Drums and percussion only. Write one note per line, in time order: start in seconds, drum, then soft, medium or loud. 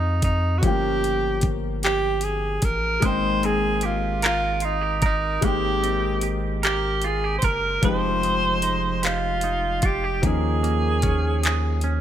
0.22 kick medium
0.22 closed hi-hat medium
0.63 kick loud
0.63 closed hi-hat medium
1.04 closed hi-hat soft
1.41 kick loud
1.41 closed hi-hat medium
1.83 clap loud
1.83 closed hi-hat medium
2.21 closed hi-hat medium
2.62 kick loud
2.62 closed hi-hat medium
3.02 kick loud
3.02 closed hi-hat medium
3.43 closed hi-hat soft
3.81 closed hi-hat medium
4.22 clap loud
4.22 closed hi-hat medium
4.60 closed hi-hat medium
5.02 kick loud
5.02 closed hi-hat medium
5.42 kick loud
5.42 closed hi-hat medium
5.84 closed hi-hat medium
6.21 closed hi-hat medium
6.63 clap loud
6.63 closed hi-hat medium
7.02 closed hi-hat medium
7.42 kick medium
7.42 closed hi-hat medium
7.83 kick loud
7.83 closed hi-hat medium
8.23 closed hi-hat medium
8.62 closed hi-hat medium
9.03 clap loud
9.03 closed hi-hat medium
9.41 closed hi-hat medium
9.82 kick loud
9.82 closed hi-hat medium
10.23 kick loud
10.23 closed hi-hat medium
10.64 closed hi-hat soft
11.02 kick loud
11.02 closed hi-hat medium
11.43 clap loud
11.43 closed hi-hat medium
11.81 closed hi-hat medium